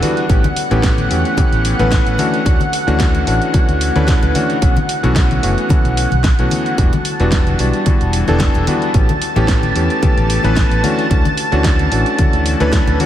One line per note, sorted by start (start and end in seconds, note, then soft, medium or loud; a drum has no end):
0.00 0.23 E3 medium
0.00 0.24 G3 medium
0.00 0.24 B3 medium
0.00 0.24 D4 medium
0.00 0.24 F#4 medium
0.00 6.79 F#5 medium
0.00 open hi-hat medium
0.00 high conga medium
0.17 closed hi-hat soft
0.29 0.41 A1 medium
0.29 0.43 E3 medium
0.29 0.43 A3 medium
0.29 0.43 B3 medium
0.29 0.44 C#4 medium
0.29 0.44 G4 medium
0.29 kick loud
0.29 closed hi-hat medium
0.44 closed hi-hat soft
0.44 high conga loud
0.44 low conga medium
0.56 open hi-hat loud
0.71 1.06 A1 medium
0.71 1.07 E3 medium
0.71 1.08 A3 medium
0.71 1.08 B3 medium
0.71 1.08 C#4 medium
0.71 1.08 G4 medium
0.71 closed hi-hat soft
0.71 low conga medium
0.83 kick loud
0.83 snare loud
0.83 closed hi-hat medium
0.98 closed hi-hat soft
0.98 high conga medium
1.10 1.22 E2 medium
1.10 1.34 E3 medium
1.10 1.35 A3 medium
1.10 1.35 B3 medium
1.10 1.35 C#4 medium
1.10 1.35 G4 medium
1.10 open hi-hat medium
1.25 closed hi-hat soft
1.37 1.76 E3 medium
1.37 1.76 A3 medium
1.37 1.76 B3 medium
1.37 1.76 C#4 medium
1.37 1.76 G4 medium
1.37 kick loud
1.37 closed hi-hat medium
1.37 high conga loud
1.52 1.72 A1 medium
1.52 closed hi-hat soft
1.65 open hi-hat loud
1.79 1.99 A1 medium
1.79 2.16 E3 medium
1.79 2.16 A3 medium
1.79 2.16 B3 medium
1.79 2.16 C#4 medium
1.79 2.16 B4 loud
1.79 closed hi-hat soft
1.79 high conga medium
1.91 kick loud
1.91 snare loud
1.91 closed hi-hat medium
2.06 2.16 A1 medium
2.06 closed hi-hat soft
2.18 2.40 E3 medium
2.18 2.40 A3 medium
2.18 2.40 C#4 medium
2.18 2.40 D4 medium
2.18 2.40 F#4 medium
2.18 open hi-hat medium
2.18 high conga medium
2.34 closed hi-hat soft
2.45 2.57 D2 loud
2.45 2.59 E3 medium
2.45 2.59 A3 medium
2.45 2.60 C#4 medium
2.45 2.60 D4 medium
2.45 2.60 F#4 medium
2.45 kick loud
2.45 closed hi-hat medium
2.60 closed hi-hat soft
2.60 high conga loud
2.73 open hi-hat loud
2.87 3.22 D2 medium
2.87 3.24 E3 medium
2.87 3.24 A3 medium
2.87 3.24 C#4 medium
2.87 3.24 D4 medium
2.87 3.24 F#4 loud
2.87 closed hi-hat soft
3.00 kick loud
3.00 snare loud
3.00 closed hi-hat medium
3.15 closed hi-hat soft
3.15 high conga medium
3.27 3.38 A1 medium
3.27 3.51 E3 medium
3.27 3.51 A3 medium
3.27 3.51 C#4 medium
3.27 3.51 D4 medium
3.27 3.51 F#4 medium
3.27 open hi-hat medium
3.42 closed hi-hat soft
3.53 3.92 E3 medium
3.53 3.92 A3 medium
3.53 3.92 C#4 medium
3.53 3.92 D4 medium
3.53 3.92 F#4 medium
3.53 muted fingered electric bass stroke soft
3.53 kick loud
3.53 closed hi-hat medium
3.53 high conga medium
3.69 3.89 D2 medium
3.69 closed hi-hat soft
3.81 open hi-hat loud
3.95 4.16 D2 medium
3.95 4.32 E3 medium
3.95 4.32 A3 medium
3.95 4.32 C#4 medium
3.95 4.32 D4 medium
3.95 4.32 B4 loud
3.95 closed hi-hat soft
3.95 high conga medium
4.08 kick loud
4.08 snare loud
4.08 closed hi-hat medium
4.08 low conga medium
4.22 4.32 D2 medium
4.22 closed hi-hat soft
4.22 low conga medium
4.35 4.56 E3 medium
4.35 4.56 A3 medium
4.35 4.56 C#4 medium
4.35 4.56 D4 medium
4.35 4.56 F#4 medium
4.35 open hi-hat medium
4.35 high conga medium
4.50 closed hi-hat soft
4.61 4.73 B1 medium
4.61 4.76 E3 medium
4.61 4.76 A3 medium
4.61 4.76 B3 medium
4.61 4.76 C#4 medium
4.61 4.76 F#4 medium
4.61 kick loud
4.61 closed hi-hat medium
4.76 closed hi-hat soft
4.76 high conga medium
4.76 low conga medium
4.89 open hi-hat loud
5.03 5.38 B1 medium
5.03 5.40 E3 medium
5.03 5.40 A3 medium
5.03 5.40 B3 medium
5.03 5.40 C#4 medium
5.03 5.40 F#4 medium
5.03 closed hi-hat soft
5.03 low conga medium
5.16 kick loud
5.16 snare loud
5.16 closed hi-hat medium
5.31 closed hi-hat soft
5.31 high conga medium
5.42 5.54 F#1 medium
5.42 5.67 E3 medium
5.42 5.67 A3 medium
5.42 5.67 B3 medium
5.42 5.67 C#4 medium
5.42 5.67 F#4 medium
5.42 open hi-hat medium
5.58 closed hi-hat soft
5.69 6.08 E3 medium
5.69 6.08 A3 medium
5.69 6.08 B3 medium
5.69 6.09 C#4 medium
5.69 6.09 F#4 medium
5.69 kick loud
5.69 closed hi-hat medium
5.69 high conga loud
5.84 6.05 B1 medium
5.84 closed hi-hat soft
5.97 open hi-hat loud
6.11 6.32 B1 medium
6.11 closed hi-hat soft
6.11 high conga medium
6.24 kick loud
6.24 snare loud
6.24 closed hi-hat medium
6.39 6.48 B1 medium
6.39 6.75 E3 medium
6.39 6.75 A3 medium
6.39 6.76 B3 medium
6.39 6.76 C#4 medium
6.39 6.76 F#4 medium
6.39 closed hi-hat soft
6.51 open hi-hat medium
6.51 high conga medium
6.66 closed hi-hat soft
6.78 6.89 E1 loud
6.78 6.92 E3 medium
6.78 6.92 G3 medium
6.78 6.92 B3 medium
6.78 6.93 D4 medium
6.78 6.93 F#4 medium
6.78 13.06 A5 medium
6.78 kick loud
6.78 closed hi-hat medium
6.93 closed hi-hat soft
6.93 high conga medium
7.05 open hi-hat loud
7.20 7.55 E1 loud
7.20 7.56 E3 medium
7.20 7.56 G3 medium
7.20 7.57 B3 medium
7.20 7.57 D4 medium
7.20 7.57 F#4 loud
7.20 closed hi-hat soft
7.32 kick loud
7.32 snare loud
7.32 closed hi-hat medium
7.47 closed hi-hat soft
7.47 high conga medium
7.59 7.70 B1 medium
7.59 7.83 E3 medium
7.59 7.84 G3 medium
7.59 7.84 B3 medium
7.59 7.84 D4 medium
7.59 7.84 F#4 medium
7.59 open hi-hat medium
7.74 closed hi-hat soft
7.86 8.24 E3 medium
7.86 8.24 G3 medium
7.86 8.25 B3 medium
7.86 8.25 D4 medium
7.86 8.25 F#4 medium
7.86 muted fingered electric bass stroke soft
7.86 kick loud
7.86 closed hi-hat medium
7.86 high conga loud
8.01 8.21 E1 medium
8.01 closed hi-hat soft
8.13 open hi-hat loud
8.27 8.48 E1 medium
8.27 8.64 E3 loud
8.27 8.65 G3 medium
8.27 8.65 B3 medium
8.27 8.65 D4 medium
8.27 8.65 A4 loud
8.27 closed hi-hat soft
8.27 high conga medium
8.40 kick loud
8.40 snare loud
8.40 closed hi-hat medium
8.40 low conga medium
8.55 8.64 E1 medium
8.55 closed hi-hat soft
8.55 low conga medium
8.67 8.88 E3 medium
8.67 8.89 G3 medium
8.67 8.89 B3 medium
8.67 8.89 D4 medium
8.67 8.89 F#4 medium
8.67 open hi-hat medium
8.67 high conga medium
8.82 closed hi-hat soft
8.94 9.06 A1 medium
8.94 9.08 E3 medium
8.94 9.08 A3 medium
8.94 9.09 B3 medium
8.94 9.09 C#4 medium
8.94 9.09 G4 medium
8.94 kick loud
8.94 closed hi-hat medium
9.09 closed hi-hat soft
9.09 high conga medium
9.09 low conga medium
9.22 open hi-hat loud
9.36 9.71 A1 medium
9.36 9.72 E3 medium
9.36 9.73 A3 medium
9.36 9.73 B3 medium
9.36 9.73 C#4 medium
9.36 9.73 G4 medium
9.36 closed hi-hat soft
9.36 low conga medium
9.48 kick loud
9.48 snare loud
9.48 closed hi-hat medium
9.63 closed hi-hat soft
9.63 high conga medium
9.75 9.87 E2 medium
9.75 9.99 E3 medium
9.75 10.00 A3 medium
9.75 10.00 B3 medium
9.75 10.00 C#4 medium
9.75 10.00 G4 medium
9.75 open hi-hat medium
9.90 closed hi-hat soft
10.02 10.40 E3 medium
10.02 10.41 A3 medium
10.02 10.41 B3 medium
10.02 10.41 C#4 medium
10.02 10.41 G4 medium
10.02 kick loud
10.02 closed hi-hat medium
10.02 high conga medium
10.17 10.37 A1 medium
10.17 closed hi-hat soft
10.30 open hi-hat loud
10.43 10.64 A1 medium
10.43 10.80 E3 loud
10.43 10.81 A3 medium
10.43 10.81 B3 medium
10.43 10.81 C#4 medium
10.43 10.81 B4 loud
10.43 closed hi-hat soft
10.43 high conga medium
10.56 kick medium
10.56 snare loud
10.56 closed hi-hat medium
10.71 10.81 A1 medium
10.71 closed hi-hat soft
10.83 11.04 E3 medium
10.83 11.05 A3 medium
10.83 11.05 C#4 medium
10.83 11.05 D4 medium
10.83 11.05 F#4 medium
10.83 open hi-hat medium
10.83 high conga medium
10.99 closed hi-hat soft
11.10 11.22 D2 loud
11.10 11.24 E3 medium
11.10 11.24 A3 medium
11.10 11.24 C#4 medium
11.10 11.24 D4 medium
11.10 11.25 F#4 medium
11.10 kick loud
11.10 closed hi-hat medium
11.25 closed hi-hat soft
11.25 high conga loud
11.37 open hi-hat medium
11.52 11.87 D2 medium
11.52 11.89 E3 medium
11.52 11.89 A3 medium
11.52 11.89 C#4 medium
11.52 11.89 D4 medium
11.52 11.89 F#4 loud
11.52 closed hi-hat soft
11.64 kick loud
11.64 snare loud
11.64 closed hi-hat loud
11.79 closed hi-hat soft
11.79 high conga medium
11.91 12.03 A1 medium
11.91 12.16 E3 medium
11.91 12.16 A3 medium
11.91 12.16 C#4 medium
11.91 12.16 D4 medium
11.91 12.16 F#4 medium
11.91 open hi-hat medium
12.06 closed hi-hat soft
12.19 12.57 E3 medium
12.19 12.57 A3 medium
12.19 12.57 C#4 medium
12.19 12.57 D4 medium
12.19 12.57 F#4 medium
12.19 muted fingered electric bass stroke soft
12.19 kick loud
12.19 closed hi-hat medium
12.19 high conga medium
12.33 12.53 D2 medium
12.33 closed hi-hat soft
12.46 open hi-hat medium
12.60 12.80 D2 medium
12.60 12.97 E3 medium
12.60 12.97 A3 medium
12.60 12.97 C#4 medium
12.60 12.97 D4 medium
12.60 12.97 B4 loud
12.60 closed hi-hat soft
12.60 high conga medium
12.72 kick loud
12.72 snare loud
12.72 closed hi-hat medium
12.72 low conga medium
12.87 12.97 D2 medium
12.87 closed hi-hat soft
12.87 low conga medium
13.00 13.06 E3 medium
13.00 13.06 A3 medium
13.00 13.06 C#4 medium
13.00 13.06 D4 medium
13.00 13.06 F#4 medium
13.00 open hi-hat medium
13.00 high conga medium